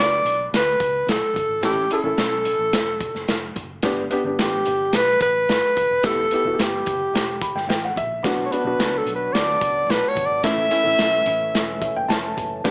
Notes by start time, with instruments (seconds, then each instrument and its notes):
Already playing: fingered electric bass C#2, upright piano D4 F#4 B4
0.00 alto saxophone D5
0.25 fingered electric bass B1, closed hi-hat, low conga
0.39 high conga
0.53 fingered electric bass D2, alto saxophone B4, snare, closed hi-hat
0.80 fingered electric bass C#2, kick, closed hi-hat, muted conga
1.07 fingered electric bass B1, alto saxophone A4, snare, closed hi-hat, high conga
1.34 fingered electric bass G1, kick, closed hi-hat, high conga, low conga
1.49 fingered electric bass G#1
1.61 fingered electric bass A1, upright piano C#4 E4 A4, alto saxophone G4, kick, snare, closed hi-hat, muted conga, low conga
1.75 high conga
1.91 upright piano C#4 E4 A4, alto saxophone A4, closed hi-hat, muted conga
2.04 fingered electric bass A1, upright piano C#4 E4 A4, high conga
2.18 fingered electric bass B1, snare, closed hi-hat
2.45 closed hi-hat, low conga
2.59 fingered electric bass A1, high conga
2.73 fingered electric bass E1, snare, closed hi-hat, muted conga
3.01 kick, closed hi-hat
3.15 fingered electric bass F#1, snare
3.28 fingered electric bass F1, snare, closed hi-hat, muted conga, high conga
3.56 fingered electric bass F#1, kick, closed hi-hat, high conga, low conga
3.83 fingered electric bass G1, upright piano B3 D4 G4, kick, snare, closed hi-hat, low conga
3.97 high conga
4.10 upright piano B3 D4 G4, closed hi-hat, muted conga
4.24 fingered electric bass G1, upright piano B3 D4 G4, high conga
4.39 fingered electric bass A1, alto saxophone G4, snare, closed hi-hat
4.65 fingered electric bass G1, closed hi-hat, muted conga, low conga
4.81 high conga
4.93 fingered electric bass B1, alto saxophone B4, snare, closed hi-hat, muted conga
5.20 fingered electric bass A1, alto saxophone B4, kick, closed hi-hat, muted conga
5.49 fingered electric bass G1, snare, closed hi-hat, muted conga, high conga
5.76 fingered electric bass E1, kick, closed hi-hat, muted conga, high conga, low conga
5.91 fingered electric bass D#1
6.03 fingered electric bass E1, upright piano B3 E4 G4, alto saxophone A4, kick, snare, closed hi-hat, muted conga, low conga
6.16 high conga
6.31 upright piano B3 E4 G4, closed hi-hat, muted conga
6.45 fingered electric bass E1, upright piano B3 E4 F#4, high conga
6.54 upright piano G4
6.58 fingered electric bass G1, snare, closed hi-hat, muted conga
6.63 alto saxophone G4
6.86 fingered electric bass F#1, kick, closed hi-hat, muted conga, low conga
6.99 high conga
7.13 fingered electric bass E1, snare, closed hi-hat, muted conga
7.42 upright piano B5, kick, closed hi-hat
7.55 fingered electric bass G1, upright piano G5, snare
7.67 fingered electric bass A1, upright piano G5, snare, closed hi-hat, muted conga, high conga
7.85 upright piano F#5
7.96 fingered electric bass A#1, upright piano E5, kick, closed hi-hat, muted conga, high conga, low conga
8.23 fingered electric bass B1, tonewheel organ F#3 B3 D4, upright piano B3 D4 F#4, kick, snare, closed hi-hat, muted conga, low conga
8.36 high conga
8.46 alto saxophone C#5
8.51 upright piano B3 D4 F#4, alto saxophone B4, closed hi-hat, muted conga
8.64 fingered electric bass B1, upright piano B3 D4 F#4, high conga
8.78 fingered electric bass C#2, snare, closed hi-hat, muted conga
8.98 alto saxophone A4
9.06 fingered electric bass B1, closed hi-hat, low conga
9.16 alto saxophone B4, high conga
9.33 fingered electric bass D2, alto saxophone D5, snare, closed hi-hat
9.61 fingered electric bass C#2, kick, closed hi-hat, muted conga
9.87 fingered electric bass B1, snare, closed hi-hat, muted conga, high conga
9.91 alto saxophone B4
10.09 alto saxophone C#5
10.15 fingered electric bass G1, kick, closed hi-hat, muted conga, high conga, low conga
10.26 fingered electric bass G#1, alto saxophone D5
10.43 fingered electric bass A1, tonewheel organ E3 A3 C#4, upright piano A3 C#4 E4, alto saxophone E5, kick, snare, closed hi-hat, muted conga, low conga
10.57 high conga
10.71 upright piano A3 C#4 E4, closed hi-hat
10.83 fingered electric bass A1, upright piano A3 C#4 E4, high conga
10.99 fingered electric bass B1, snare, closed hi-hat
11.26 fingered electric bass A1, closed hi-hat, low conga
11.40 high conga
11.54 fingered electric bass E1, snare, closed hi-hat, muted conga
11.82 upright piano E5, kick, closed hi-hat, muted conga
11.95 fingered electric bass F#1, upright piano G5
12.08 fingered electric bass F1, upright piano A5, snare, closed hi-hat, muted conga, high conga
12.37 fingered electric bass F#1, kick, closed hi-hat, muted conga, high conga, low conga
12.64 fingered electric bass G1, tonewheel organ G3 B3 D4, upright piano B3 D4 G4, kick, snare, closed hi-hat, muted conga, low conga